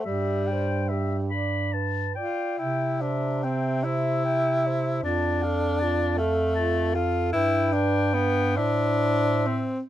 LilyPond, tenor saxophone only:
\new Staff \with { instrumentName = "Tenor saxophone" } { \time 6/8 \key c \major \tempo 4. = 48 g4. r4 f'8 | e'8 d'8 c'8 e'4. | d'4. a4 f'8 | e'8 d'8 b8 d'4 c'8 | }